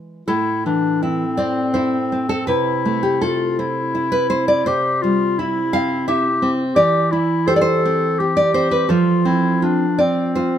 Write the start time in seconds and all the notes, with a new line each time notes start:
Already playing: E3 G#3 E4
0.28 A2 E4 A4
0.66 E3 D4
1.03 C4 E4
1.37 C4 D5
1.74 E4 C5
2.12 C4
2.29 A4
2.47 C3 E4 B4
2.85 A3
3.03 G4
3.21 E4 F4 A4
3.59 C4 E4
3.95 E4
4.12 B4
4.30 C4 C5
4.48 D5
4.66 C3 G4 C5
5.02 G3 F4
5.38 E4
5.73 C4 F5
6.08 E4 G4 E5
6.42 C4
6.75 E3 G4 D5
7.11 E4
7.48 G4 A4 C5
7.56 D5
7.61 C5
7.85 C4
8.19 G4
8.37 D5
8.54 C4 C5
8.71 B4
8.89 F3 F4 A4
9.25 C4 E4
9.62 D4 F4
9.98 C4 D5
10.35 F4 C5